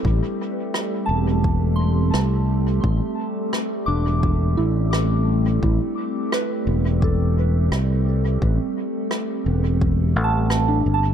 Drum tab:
SD |--r---r-|--r---r-|--r---r-|--r---r-|
BD |o---o---|o---o---|o---o---|o---o---|